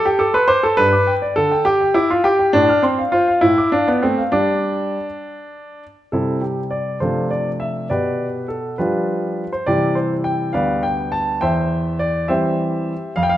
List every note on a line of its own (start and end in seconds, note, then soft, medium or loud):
0.05 0.20 G4 medium
0.05 0.21 A5 soft
0.19 0.34 A4 medium
0.19 0.35 D6 soft
0.34 0.49 B4 medium
0.34 0.49 C6 soft
0.48 0.63 C5 medium
0.48 0.64 D6 medium
0.63 0.78 A4 medium
0.63 0.78 A5 soft
0.77 0.92 G2 medium
0.77 1.13 B4 medium
0.93 1.08 D6 soft
1.07 1.23 G5 soft
1.22 1.37 D5 soft
1.36 1.52 D3 soft
1.36 1.63 A4 medium
1.51 1.67 G5 soft
1.65 1.95 G4 medium
1.65 1.81 D6 soft
1.81 1.96 G5 soft
1.94 2.10 E4 medium
1.94 2.11 D6 soft
2.10 2.25 F4 medium
2.10 2.25 C6 soft
2.24 2.51 G4 medium
2.24 2.40 D6 medium
2.39 2.54 G5 soft
2.53 2.68 A2 medium
2.53 2.83 D4 medium
2.69 2.84 F6 soft
2.82 3.01 C4 medium
2.82 2.99 C6 soft
2.98 3.14 F5 soft
3.12 3.42 F4 medium
3.12 3.29 C5 soft
3.28 3.43 F5 soft
3.41 3.57 A2 medium
3.41 3.69 E4 medium
3.58 3.74 D6 soft
3.72 3.87 D4 medium
3.72 3.88 F5 soft
3.87 4.03 B3 medium
3.87 4.03 D5 soft
4.03 4.19 A3 soft
4.03 4.21 C4 medium
4.18 4.33 F5 soft
4.32 4.96 G3 medium
4.32 5.83 D4 medium
4.32 5.05 D5 soft
4.32 5.05 D6 soft
6.12 6.99 C3 soft
6.12 6.98 G3 soft
6.12 6.41 C4 soft
6.12 6.41 E4 soft
6.12 6.39 A4 soft
6.41 6.60 G4 soft
6.71 6.98 D5 soft
7.00 7.88 C3 soft
7.00 7.86 F3 soft
7.00 7.87 A3 soft
7.00 7.87 D4 soft
7.00 7.29 F4 soft
7.00 7.29 A4 soft
7.00 7.28 C5 soft
7.31 7.49 D5 soft
7.60 7.90 E5 soft
7.90 8.77 B2 soft
7.90 8.46 G4 soft
7.90 8.46 B4 soft
7.90 8.25 D5 soft
8.48 8.75 A4 soft
8.78 9.43 F3 soft
8.78 9.43 G3 soft
8.78 9.43 D4 soft
8.78 9.49 F4 soft
8.78 9.49 G4 soft
8.78 9.48 B4 soft
9.53 9.67 C5 soft
9.66 10.52 C3 soft
9.66 10.51 E3 soft
9.66 10.51 G3 soft
9.66 10.51 E4 soft
9.66 9.95 G4 soft
9.66 9.96 D5 medium
9.95 10.13 C5 soft
10.24 10.51 G5 medium
10.53 11.39 D2 soft
10.53 11.38 G3 soft
10.53 11.38 B3 soft
10.53 10.82 B4 soft
10.53 10.82 D5 soft
10.53 10.83 F5 medium
10.83 11.13 G5 medium
11.12 11.42 A5 medium
11.41 12.27 E2 soft
11.41 11.97 C5 soft
11.41 11.96 E5 soft
11.41 11.96 G5 medium
11.99 12.29 D5 medium
12.28 12.92 E3 soft
12.28 12.92 G3 soft
12.28 12.92 C4 soft
12.28 13.13 G4 soft
12.28 13.13 C5 soft
12.28 13.12 E5 medium
13.16 13.37 F2 medium
13.16 13.23 F5 medium
13.23 13.30 G5 medium
13.29 13.37 F5 medium